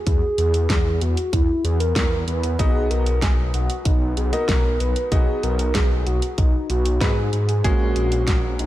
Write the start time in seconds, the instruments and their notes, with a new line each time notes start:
0.07 detuned saw bass E2, soft synth lead G#4, kick, closed hi-hat
0.38 detuned saw bass E2, closed hi-hat
0.54 closed hi-hat
0.70 detuned saw bass E2, kick, snare, closed hi-hat
1.01 detuned saw bass E2, soft synth lead F#4, closed hi-hat
1.17 closed hi-hat
1.33 detuned saw bass E2, soft synth lead E4, kick, closed hi-hat
1.64 detuned saw bass E2, soft synth lead G#4, closed hi-hat
1.80 soft synth lead A#4, closed hi-hat
1.96 detuned saw bass E2, kick, snare, closed hi-hat
2.27 detuned saw bass E2, soft synth lead B4, closed hi-hat
2.43 closed hi-hat
2.59 detuned saw bass B1, grand piano F#3 B3 D#4 F#4 D#5, soft synth lead G#4, kick, closed hi-hat
2.90 detuned saw bass B1, soft synth lead A#4, closed hi-hat
3.06 closed hi-hat
3.22 detuned saw bass B1, soft synth lead G#4, kick, snare, closed hi-hat
3.54 detuned saw bass B1, soft synth lead F#4, closed hi-hat
3.70 closed hi-hat
3.85 detuned saw bass B1, soft synth lead D#4, kick, closed hi-hat
4.17 detuned saw bass B1, soft synth lead G#4, closed hi-hat
4.33 grand piano F#3 B3 D#4 F#4 D#5, soft synth lead A#4, closed hi-hat
4.49 detuned saw bass B1, kick, snare, closed hi-hat
4.80 detuned saw bass B1, soft synth lead B4, closed hi-hat
4.96 closed hi-hat
5.12 detuned saw bass B1, grand piano F#3 B3 D#4 F#4 D#5, soft synth lead G#4, kick, closed hi-hat
5.43 detuned saw bass B1, soft synth lead A#4, closed hi-hat
5.59 closed hi-hat
5.75 detuned saw bass B1, soft synth lead G#4, kick, snare, closed hi-hat
6.06 detuned saw bass B1, soft synth lead F#4, closed hi-hat
6.22 closed hi-hat
6.38 detuned saw bass B1, soft synth lead D#4, kick, closed hi-hat
6.70 detuned saw bass B1, soft synth lead F#4, closed hi-hat
6.85 closed hi-hat
7.01 detuned saw bass G#2, grand piano F#3 B3 D#4 F#4 B4, soft synth lead G#4, kick, snare, closed hi-hat
7.33 detuned saw bass G#2, closed hi-hat
7.49 soft synth lead G#4, closed hi-hat
7.64 detuned saw bass A#1, grand piano G#3 A#3 C#4 F#4 G#4, soft synth lead F#4, kick, closed hi-hat
7.96 detuned saw bass A#1, closed hi-hat
8.12 closed hi-hat
8.27 detuned saw bass A#1, kick, snare, closed hi-hat
8.59 detuned saw bass A#1, soft synth lead D#4, closed hi-hat